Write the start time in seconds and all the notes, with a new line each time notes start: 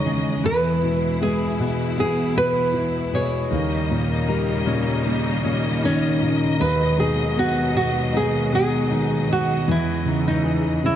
Already playing: E2 C#3 D#3 E3 G#3 C#4 D#4 C#5 D#5
0.06 C#3 G#4
0.44 E2 B2 E3 E4 B4
0.83 B2 E4
1.21 G#3 G#4
1.59 B2 B3
1.97 B3 E4 G#4
2.36 B2 B3 B4
2.74 E3 E4
3.13 B2 G#4 C#5
3.51 D#2 C#3 D#3 G3 A#3 D#5
3.90 A#2 D#4
4.28 G3 A#4
4.67 A#2 C#4
5.05 A#3 D#4
5.44 A#2 C#4
5.83 D#3 C#4 D#4
6.20 A#2 A#4
6.59 D#2 B2 D#3 F#3 G#3 B4
6.98 B2 D#4 G#4
7.37 B3 F#4 G#4
7.75 B2 B3 F#4
8.13 D#4 G#4
8.52 B2 B3 G#4
8.91 D#3 D#4
9.28 B2 G#4
9.32 F#4
9.67 E2 C#3 E3 E4
10.05 C#3 D#4
10.28 D#4
10.44 E3 G#4
10.83 C#3 C#4 E4